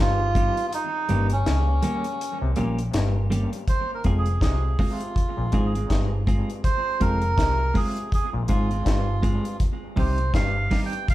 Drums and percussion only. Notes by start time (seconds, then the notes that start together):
0.35 kick, closed hi-hat
0.57 closed hi-hat
0.73 closed hi-hat
1.09 closed hi-hat
1.30 closed hi-hat
1.46 snare, closed hi-hat
1.82 closed hi-hat
2.04 closed hi-hat
2.21 closed hi-hat
2.56 closed hi-hat
2.79 closed hi-hat
2.94 snare, closed hi-hat
3.32 closed hi-hat
3.53 closed hi-hat
3.68 kick, closed hi-hat
4.04 kick, closed hi-hat
4.26 closed hi-hat
4.41 kick, snare, closed hi-hat
4.79 kick, open hi-hat
5.00 closed hi-hat
5.16 kick, closed hi-hat
5.52 kick, closed hi-hat
5.75 closed hi-hat
5.90 kick, snare, closed hi-hat
6.27 kick, closed hi-hat
6.50 closed hi-hat
6.64 kick, closed hi-hat
7.01 kick, closed hi-hat
7.22 closed hi-hat
7.38 kick, snare, closed hi-hat
7.75 kick, open hi-hat
7.97 closed hi-hat
8.12 kick, closed hi-hat
8.48 kick, closed hi-hat
8.71 closed hi-hat
8.86 kick, snare, closed hi-hat
9.23 kick, closed hi-hat
9.45 closed hi-hat
9.60 kick, closed hi-hat
9.97 kick, open hi-hat
10.18 closed hi-hat
10.34 kick, snare, closed hi-hat
10.71 kick, snare, open hi-hat
10.93 closed hi-hat
11.08 kick, closed hi-hat